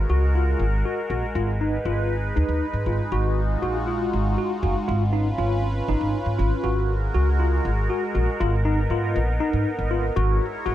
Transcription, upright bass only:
0, 0, Header, 1, 2, 480
1, 0, Start_track
1, 0, Tempo, 502934
1, 1291, Time_signature, 7, 3, 24, 8
1, 10259, End_track
2, 0, Start_track
2, 0, Title_t, "Upright bass"
2, 0, Program_c, 0, 32
2, 90, Note_on_c, 0, 37, 71
2, 508, Note_off_c, 0, 37, 0
2, 568, Note_on_c, 0, 32, 77
2, 778, Note_off_c, 0, 32, 0
2, 1049, Note_on_c, 0, 34, 80
2, 1155, Note_off_c, 0, 34, 0
2, 1291, Note_on_c, 0, 32, 79
2, 1709, Note_off_c, 0, 32, 0
2, 1769, Note_on_c, 0, 32, 76
2, 2188, Note_off_c, 0, 32, 0
2, 2260, Note_on_c, 0, 39, 81
2, 2361, Note_off_c, 0, 39, 0
2, 2372, Note_on_c, 0, 39, 76
2, 2477, Note_off_c, 0, 39, 0
2, 2610, Note_on_c, 0, 44, 69
2, 2716, Note_off_c, 0, 44, 0
2, 2730, Note_on_c, 0, 32, 78
2, 2836, Note_off_c, 0, 32, 0
2, 2976, Note_on_c, 0, 32, 85
2, 3393, Note_off_c, 0, 32, 0
2, 3460, Note_on_c, 0, 34, 76
2, 3875, Note_off_c, 0, 34, 0
2, 3946, Note_on_c, 0, 32, 82
2, 4149, Note_off_c, 0, 32, 0
2, 4417, Note_on_c, 0, 30, 82
2, 4520, Note_off_c, 0, 30, 0
2, 4662, Note_on_c, 0, 32, 86
2, 5077, Note_off_c, 0, 32, 0
2, 5137, Note_on_c, 0, 32, 76
2, 5554, Note_off_c, 0, 32, 0
2, 5615, Note_on_c, 0, 32, 81
2, 5719, Note_off_c, 0, 32, 0
2, 5735, Note_on_c, 0, 32, 75
2, 5839, Note_off_c, 0, 32, 0
2, 5975, Note_on_c, 0, 44, 71
2, 6079, Note_off_c, 0, 44, 0
2, 6100, Note_on_c, 0, 32, 84
2, 6202, Note_off_c, 0, 32, 0
2, 6333, Note_on_c, 0, 32, 81
2, 6752, Note_off_c, 0, 32, 0
2, 6818, Note_on_c, 0, 37, 75
2, 7234, Note_off_c, 0, 37, 0
2, 7301, Note_on_c, 0, 32, 79
2, 7507, Note_off_c, 0, 32, 0
2, 7778, Note_on_c, 0, 34, 80
2, 7881, Note_off_c, 0, 34, 0
2, 8023, Note_on_c, 0, 32, 87
2, 8436, Note_off_c, 0, 32, 0
2, 8495, Note_on_c, 0, 44, 75
2, 8703, Note_off_c, 0, 44, 0
2, 8739, Note_on_c, 0, 34, 77
2, 8945, Note_off_c, 0, 34, 0
2, 9099, Note_on_c, 0, 44, 75
2, 9201, Note_off_c, 0, 44, 0
2, 9340, Note_on_c, 0, 32, 72
2, 9649, Note_off_c, 0, 32, 0
2, 9701, Note_on_c, 0, 32, 90
2, 9906, Note_off_c, 0, 32, 0
2, 10174, Note_on_c, 0, 32, 81
2, 10259, Note_off_c, 0, 32, 0
2, 10259, End_track
0, 0, End_of_file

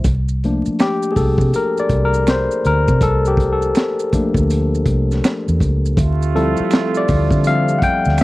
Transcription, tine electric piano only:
0, 0, Header, 1, 2, 480
1, 0, Start_track
1, 0, Tempo, 740741
1, 31, Time_signature, 4, 2, 24, 8
1, 5337, End_track
2, 0, Start_track
2, 0, Title_t, "Tine electric piano"
2, 0, Program_c, 0, 4
2, 0, Control_c, 0, 64, 127
2, 40, Control_c, 0, 64, 0
2, 135, Control_c, 0, 64, 127
2, 288, Note_on_c, 0, 53, 44
2, 288, Note_on_c, 0, 57, 43
2, 290, Note_on_c, 0, 58, 44
2, 295, Note_on_c, 0, 62, 52
2, 526, Note_on_c, 0, 67, 89
2, 724, Note_on_c, 0, 68, 60
2, 731, Note_off_c, 0, 67, 0
2, 754, Note_off_c, 0, 68, 0
2, 757, Note_on_c, 0, 69, 73
2, 973, Note_off_c, 0, 57, 0
2, 974, Note_off_c, 0, 53, 0
2, 975, Note_off_c, 0, 58, 0
2, 977, Note_off_c, 0, 62, 0
2, 977, Note_off_c, 0, 69, 0
2, 1010, Note_on_c, 0, 70, 81
2, 1163, Note_on_c, 0, 74, 79
2, 1165, Note_off_c, 0, 70, 0
2, 1306, Note_off_c, 0, 74, 0
2, 1327, Note_on_c, 0, 70, 83
2, 1469, Note_off_c, 0, 70, 0
2, 1487, Note_on_c, 0, 72, 84
2, 1726, Note_off_c, 0, 72, 0
2, 1727, Note_on_c, 0, 70, 94
2, 1943, Note_off_c, 0, 70, 0
2, 1962, Note_on_c, 0, 69, 93
2, 2121, Note_off_c, 0, 69, 0
2, 2123, Note_on_c, 0, 67, 67
2, 2282, Note_off_c, 0, 67, 0
2, 2284, Note_on_c, 0, 69, 67
2, 2675, Note_on_c, 0, 57, 48
2, 2677, Note_on_c, 0, 53, 49
2, 2678, Note_on_c, 0, 58, 44
2, 2685, Note_on_c, 0, 62, 57
2, 2972, Note_off_c, 0, 69, 0
2, 3847, Note_off_c, 0, 57, 0
2, 3848, Note_off_c, 0, 53, 0
2, 3849, Note_off_c, 0, 58, 0
2, 3852, Note_off_c, 0, 62, 0
2, 3881, Control_c, 0, 64, 0
2, 4012, Control_c, 0, 64, 127
2, 4114, Note_on_c, 0, 53, 51
2, 4116, Note_on_c, 0, 55, 50
2, 4117, Note_on_c, 0, 60, 48
2, 4119, Note_on_c, 0, 69, 80
2, 4123, Note_on_c, 0, 64, 52
2, 4489, Note_off_c, 0, 69, 0
2, 4518, Note_on_c, 0, 74, 89
2, 4807, Note_off_c, 0, 53, 0
2, 4808, Note_off_c, 0, 55, 0
2, 4808, Note_off_c, 0, 60, 0
2, 4811, Note_off_c, 0, 64, 0
2, 4836, Note_on_c, 0, 53, 49
2, 4839, Note_on_c, 0, 55, 44
2, 4841, Note_on_c, 0, 77, 104
2, 4842, Note_on_c, 0, 76, 52
2, 4843, Note_on_c, 0, 60, 47
2, 4844, Note_off_c, 0, 74, 0
2, 5044, Note_on_c, 0, 78, 64
2, 5049, Note_off_c, 0, 77, 0
2, 5050, Note_off_c, 0, 53, 0
2, 5051, Note_off_c, 0, 55, 0
2, 5053, Note_off_c, 0, 76, 0
2, 5054, Note_off_c, 0, 60, 0
2, 5074, Note_off_c, 0, 78, 0
2, 5076, Note_on_c, 0, 79, 106
2, 5297, Note_off_c, 0, 79, 0
2, 5337, End_track
0, 0, End_of_file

